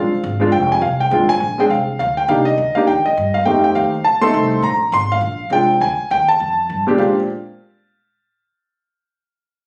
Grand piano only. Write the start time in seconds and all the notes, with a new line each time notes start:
Already playing: G#3 C4 D4 F4 F5
0.40 G#3 C4 D4 F4
0.52 G5
0.72 G#5
0.82 F5
1.00 G5
1.11 G#3 C4 D4 F4
1.29 G#5
1.58 G#3 C4 D4 G#4 G5
1.71 F5
1.99 F5
2.17 G5
2.29 A#3 D4 D#4 G4 F5
2.45 D#5
2.75 A#3 D4 D#4 G4 F5
2.87 G5
3.06 D#5
3.34 F5
3.45 A3 C4 D#4 G4 G5
3.59 F5
3.64 G5
3.75 F5
4.04 A5
4.21 A3 C4 D#4 A4 C6
4.64 A#5
4.94 C6
5.12 F5
5.51 G#3 C4 D4 F4 G5
5.81 G#5
6.11 G5
6.29 A5
6.87 A#2 G#3 C4 D4 G4
6.99 G#3 C4 D4 G4 F5